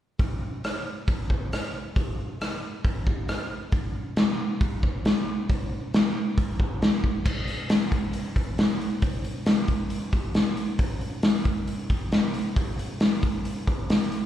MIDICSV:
0, 0, Header, 1, 2, 480
1, 0, Start_track
1, 0, Tempo, 441826
1, 217, Time_signature, 4, 2, 24, 8
1, 15491, End_track
2, 0, Start_track
2, 0, Title_t, "Drums"
2, 211, Note_on_c, 9, 36, 94
2, 212, Note_on_c, 9, 46, 43
2, 320, Note_off_c, 9, 36, 0
2, 321, Note_off_c, 9, 46, 0
2, 697, Note_on_c, 9, 46, 46
2, 704, Note_on_c, 9, 37, 87
2, 806, Note_off_c, 9, 46, 0
2, 812, Note_off_c, 9, 37, 0
2, 1171, Note_on_c, 9, 36, 81
2, 1175, Note_on_c, 9, 46, 41
2, 1280, Note_off_c, 9, 36, 0
2, 1284, Note_off_c, 9, 46, 0
2, 1412, Note_on_c, 9, 36, 66
2, 1521, Note_off_c, 9, 36, 0
2, 1658, Note_on_c, 9, 46, 46
2, 1665, Note_on_c, 9, 37, 89
2, 1767, Note_off_c, 9, 46, 0
2, 1774, Note_off_c, 9, 37, 0
2, 2131, Note_on_c, 9, 36, 88
2, 2138, Note_on_c, 9, 46, 42
2, 2240, Note_off_c, 9, 36, 0
2, 2246, Note_off_c, 9, 46, 0
2, 2619, Note_on_c, 9, 46, 43
2, 2625, Note_on_c, 9, 37, 92
2, 2727, Note_off_c, 9, 46, 0
2, 2734, Note_off_c, 9, 37, 0
2, 3092, Note_on_c, 9, 36, 84
2, 3100, Note_on_c, 9, 46, 38
2, 3200, Note_off_c, 9, 36, 0
2, 3209, Note_off_c, 9, 46, 0
2, 3332, Note_on_c, 9, 36, 76
2, 3440, Note_off_c, 9, 36, 0
2, 3569, Note_on_c, 9, 46, 41
2, 3575, Note_on_c, 9, 37, 87
2, 3678, Note_off_c, 9, 46, 0
2, 3684, Note_off_c, 9, 37, 0
2, 4041, Note_on_c, 9, 46, 37
2, 4047, Note_on_c, 9, 36, 88
2, 4150, Note_off_c, 9, 46, 0
2, 4155, Note_off_c, 9, 36, 0
2, 4526, Note_on_c, 9, 46, 41
2, 4532, Note_on_c, 9, 38, 91
2, 4634, Note_off_c, 9, 46, 0
2, 4641, Note_off_c, 9, 38, 0
2, 5005, Note_on_c, 9, 46, 39
2, 5007, Note_on_c, 9, 36, 91
2, 5114, Note_off_c, 9, 46, 0
2, 5116, Note_off_c, 9, 36, 0
2, 5248, Note_on_c, 9, 36, 70
2, 5356, Note_off_c, 9, 36, 0
2, 5489, Note_on_c, 9, 46, 41
2, 5495, Note_on_c, 9, 38, 84
2, 5597, Note_off_c, 9, 46, 0
2, 5604, Note_off_c, 9, 38, 0
2, 5969, Note_on_c, 9, 46, 46
2, 5971, Note_on_c, 9, 36, 88
2, 6077, Note_off_c, 9, 46, 0
2, 6079, Note_off_c, 9, 36, 0
2, 6451, Note_on_c, 9, 46, 46
2, 6458, Note_on_c, 9, 38, 104
2, 6560, Note_off_c, 9, 46, 0
2, 6567, Note_off_c, 9, 38, 0
2, 6927, Note_on_c, 9, 46, 45
2, 6928, Note_on_c, 9, 36, 84
2, 7036, Note_off_c, 9, 36, 0
2, 7036, Note_off_c, 9, 46, 0
2, 7166, Note_on_c, 9, 36, 80
2, 7275, Note_off_c, 9, 36, 0
2, 7409, Note_on_c, 9, 46, 40
2, 7416, Note_on_c, 9, 38, 94
2, 7518, Note_off_c, 9, 46, 0
2, 7524, Note_off_c, 9, 38, 0
2, 7646, Note_on_c, 9, 36, 59
2, 7754, Note_off_c, 9, 36, 0
2, 7883, Note_on_c, 9, 36, 91
2, 7883, Note_on_c, 9, 49, 77
2, 7991, Note_off_c, 9, 49, 0
2, 7992, Note_off_c, 9, 36, 0
2, 8124, Note_on_c, 9, 46, 43
2, 8232, Note_off_c, 9, 46, 0
2, 8360, Note_on_c, 9, 46, 59
2, 8366, Note_on_c, 9, 38, 102
2, 8468, Note_off_c, 9, 46, 0
2, 8475, Note_off_c, 9, 38, 0
2, 8602, Note_on_c, 9, 36, 67
2, 8602, Note_on_c, 9, 46, 42
2, 8710, Note_off_c, 9, 46, 0
2, 8711, Note_off_c, 9, 36, 0
2, 8836, Note_on_c, 9, 46, 55
2, 8945, Note_off_c, 9, 46, 0
2, 9082, Note_on_c, 9, 36, 76
2, 9084, Note_on_c, 9, 46, 50
2, 9191, Note_off_c, 9, 36, 0
2, 9193, Note_off_c, 9, 46, 0
2, 9325, Note_on_c, 9, 46, 59
2, 9331, Note_on_c, 9, 38, 92
2, 9433, Note_off_c, 9, 46, 0
2, 9440, Note_off_c, 9, 38, 0
2, 9576, Note_on_c, 9, 46, 44
2, 9684, Note_off_c, 9, 46, 0
2, 9800, Note_on_c, 9, 46, 62
2, 9804, Note_on_c, 9, 36, 91
2, 9908, Note_off_c, 9, 46, 0
2, 9912, Note_off_c, 9, 36, 0
2, 10043, Note_on_c, 9, 46, 46
2, 10152, Note_off_c, 9, 46, 0
2, 10277, Note_on_c, 9, 46, 56
2, 10283, Note_on_c, 9, 38, 97
2, 10385, Note_off_c, 9, 46, 0
2, 10392, Note_off_c, 9, 38, 0
2, 10513, Note_on_c, 9, 46, 38
2, 10520, Note_on_c, 9, 36, 67
2, 10622, Note_off_c, 9, 46, 0
2, 10628, Note_off_c, 9, 36, 0
2, 10756, Note_on_c, 9, 46, 50
2, 10865, Note_off_c, 9, 46, 0
2, 11003, Note_on_c, 9, 36, 72
2, 11008, Note_on_c, 9, 46, 39
2, 11112, Note_off_c, 9, 36, 0
2, 11116, Note_off_c, 9, 46, 0
2, 11239, Note_on_c, 9, 46, 46
2, 11245, Note_on_c, 9, 38, 81
2, 11347, Note_off_c, 9, 46, 0
2, 11354, Note_off_c, 9, 38, 0
2, 11483, Note_on_c, 9, 46, 39
2, 11592, Note_off_c, 9, 46, 0
2, 11720, Note_on_c, 9, 46, 58
2, 11723, Note_on_c, 9, 36, 94
2, 11829, Note_off_c, 9, 46, 0
2, 11832, Note_off_c, 9, 36, 0
2, 11963, Note_on_c, 9, 46, 39
2, 12072, Note_off_c, 9, 46, 0
2, 12197, Note_on_c, 9, 46, 58
2, 12203, Note_on_c, 9, 38, 94
2, 12305, Note_off_c, 9, 46, 0
2, 12312, Note_off_c, 9, 38, 0
2, 12436, Note_on_c, 9, 46, 41
2, 12443, Note_on_c, 9, 36, 73
2, 12544, Note_off_c, 9, 46, 0
2, 12552, Note_off_c, 9, 36, 0
2, 12683, Note_on_c, 9, 46, 51
2, 12792, Note_off_c, 9, 46, 0
2, 12925, Note_on_c, 9, 46, 48
2, 12927, Note_on_c, 9, 36, 72
2, 13033, Note_off_c, 9, 46, 0
2, 13036, Note_off_c, 9, 36, 0
2, 13167, Note_on_c, 9, 46, 52
2, 13173, Note_on_c, 9, 38, 89
2, 13275, Note_off_c, 9, 46, 0
2, 13282, Note_off_c, 9, 38, 0
2, 13406, Note_on_c, 9, 46, 44
2, 13514, Note_off_c, 9, 46, 0
2, 13650, Note_on_c, 9, 36, 90
2, 13650, Note_on_c, 9, 46, 58
2, 13759, Note_off_c, 9, 36, 0
2, 13759, Note_off_c, 9, 46, 0
2, 13896, Note_on_c, 9, 46, 47
2, 14005, Note_off_c, 9, 46, 0
2, 14126, Note_on_c, 9, 46, 61
2, 14133, Note_on_c, 9, 38, 94
2, 14235, Note_off_c, 9, 46, 0
2, 14242, Note_off_c, 9, 38, 0
2, 14368, Note_on_c, 9, 46, 45
2, 14373, Note_on_c, 9, 36, 68
2, 14477, Note_off_c, 9, 46, 0
2, 14482, Note_off_c, 9, 36, 0
2, 14612, Note_on_c, 9, 46, 56
2, 14721, Note_off_c, 9, 46, 0
2, 14856, Note_on_c, 9, 36, 76
2, 14857, Note_on_c, 9, 46, 43
2, 14965, Note_off_c, 9, 36, 0
2, 14965, Note_off_c, 9, 46, 0
2, 15098, Note_on_c, 9, 46, 54
2, 15105, Note_on_c, 9, 38, 90
2, 15207, Note_off_c, 9, 46, 0
2, 15214, Note_off_c, 9, 38, 0
2, 15338, Note_on_c, 9, 46, 42
2, 15446, Note_off_c, 9, 46, 0
2, 15491, End_track
0, 0, End_of_file